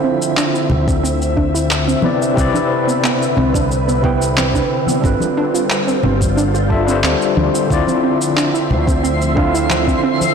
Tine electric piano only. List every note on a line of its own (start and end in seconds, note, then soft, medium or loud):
0.00 2.05 D3 medium
0.00 2.03 C4 medium
0.00 2.04 E4 medium
0.00 2.06 F4 medium
0.00 2.02 C5 medium
0.00 2.06 F5 medium
2.02 2.33 C3 medium
2.02 2.33 C4 medium
2.02 2.33 E4 medium
2.02 2.34 B4 medium
2.02 2.34 D5 medium
2.34 3.98 C3 medium
2.34 3.99 C4 medium
2.34 4.00 E4 medium
2.39 4.01 B4 medium
2.39 4.02 D5 loud
4.02 4.13 C3 medium
4.02 4.14 C4 medium
4.02 4.14 E4 medium
4.02 4.14 B4 medium
4.02 4.15 G5 medium
5.00 6.65 G3 medium
5.00 6.66 D4 medium
5.00 6.67 F4 medium
5.05 6.68 A4 medium
5.05 6.69 B4 medium
6.69 6.83 G3 medium
6.69 6.83 D4 medium
6.69 6.84 F4 medium
6.69 6.84 A4 medium
6.69 6.84 E5 medium
6.85 7.65 G3 medium
6.85 7.66 D4 medium
6.85 7.67 F4 medium
6.90 7.68 A4 medium
6.90 7.68 C5 loud
7.67 9.32 D3 medium
7.67 9.32 C4 medium
7.67 9.33 E4 medium
7.72 9.34 F4 medium
7.72 9.35 D5 loud
9.35 9.46 D3 medium
9.35 9.47 C4 medium
9.35 9.47 E4 medium
9.35 9.48 F4 medium
9.35 9.48 F5 medium